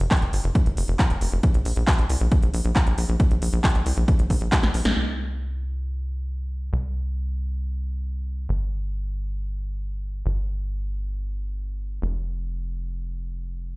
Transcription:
0.00 F1, closed hi-hat
0.11 kick, clap, closed hi-hat
0.17 closed hi-hat
0.22 F1, closed hi-hat
0.33 G1, open hi-hat
0.44 F1, closed hi-hat
0.55 kick, closed hi-hat
0.66 F1, closed hi-hat
0.77 F1, open hi-hat
0.88 F1, closed hi-hat
0.99 kick, clap, closed hi-hat
1.10 F1, closed hi-hat
1.21 F1, open hi-hat
1.32 F1, closed hi-hat
1.43 kick, closed hi-hat
1.54 A#1, closed hi-hat
1.65 A#1, open hi-hat
1.76 A#1, closed hi-hat
1.87 kick, clap, closed hi-hat
1.93 closed hi-hat
1.98 A#1, closed hi-hat
2.10 C2, open hi-hat
2.21 A#1, closed hi-hat
2.32 kick, closed hi-hat
2.43 A#1, closed hi-hat
2.54 A#1, open hi-hat
2.65 A#1, closed hi-hat
2.76 kick, clap, closed hi-hat
2.87 A#1, closed hi-hat
2.98 A#1, open hi-hat
3.09 A#1, closed hi-hat
3.20 kick, closed hi-hat
3.31 A#1, closed hi-hat
3.42 A#1, open hi-hat
3.53 A#1, closed hi-hat
3.64 kick, clap, closed hi-hat
3.69 closed hi-hat
3.75 A#1, closed hi-hat
3.86 C2, open hi-hat
3.97 A#1, closed hi-hat
4.08 kick, closed hi-hat
4.19 A#1, closed hi-hat
4.30 A#1, kick, open hi-hat
4.41 A#1, closed hi-hat
4.52 kick, snare, clap, closed hi-hat
4.63 A#1, snare, closed hi-hat
4.74 A#1, open hi-hat
4.85 A#1, snare, closed hi-hat
4.96 C2
6.73 C2
8.49 G1
10.26 G1
12.02 F1

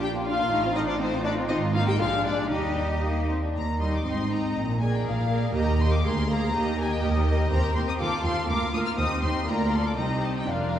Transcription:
Already playing: A#1
0.01 D4 G4 G5
0.13 A#3 F4
0.25 D4 F4 F5
0.39 A#3 F4
0.51 A1 A3 D#4 F4
0.64 C4 F4
0.75 A3 D#4 D#5
0.87 C4 D4 F4 D5
0.99 A3 C4 D#4 C5
1.12 C4 F4
1.24 A3 D4 D#4 D5
1.36 C4 F4
1.48 G#1 C4 D#4 F4 D#5
1.73 A#3 D#4 F4 F5
1.86 G4 G5
1.99 A#1 G#3 D4 F4 F5
2.24 D4 D5
2.50 D#2 G3 D#4 G4 D#5
3.03 A#3
3.29 C4
3.43 D4
3.55 D#2 A#5
3.80 G3 D#4 D#5 C6
3.94 D6
4.05 G#1 G#2 C4 D#4 D#5 C6
4.30 C4 D#4 D#5 A#5
4.55 A#1 A#2
4.80 A#3 G#4 A#4 D5 G#5
4.93 G5
5.05 A#1 A#2 F5
5.30 A#3 G#4 A#4 D5
5.55 D#2 A#3 G4 A#4 D#5 A#5
5.80 A#3 G4 A#4 D#5 C6
5.93 D6
6.05 D2 A#3 G#4 A#4 F5 C6
6.30 A#3 G#4 A#4 F5 A#5
6.54 D#2 A#3 G4 A#4 D#5
6.79 A#3 G4 A#4 D#5 G#5
6.92 G5
7.03 D#2 D#5
7.27 A#3 G4 A#4 D#5
7.51 D#2 C4 G4 A#4 C5 A#5
7.76 D#2 C4 G4 A#4 C5 C6
7.88 D#6
8.00 D#2 C4 F4 A4 F5 D6
8.24 D#2 C4 F4 A4 F5 C6
8.49 D2 A#3 F4 A#4 F5 D6
8.73 D2 A#3 F4 A#4 F5 D#6
8.86 F6
8.97 D#2 C4 D#4 G4 C5 D#6
9.22 D#2 C4 D#4 G4 C5 C6
9.47 D2 A#3 F4 A#4 D5 A#5
9.73 A4 C6
9.86 D6
9.97 C2 C4 D#4 G4 D#5 A#5
10.23 A5
10.37 G5
10.48 F1 F2 D4 F4 A#4 D5 F5

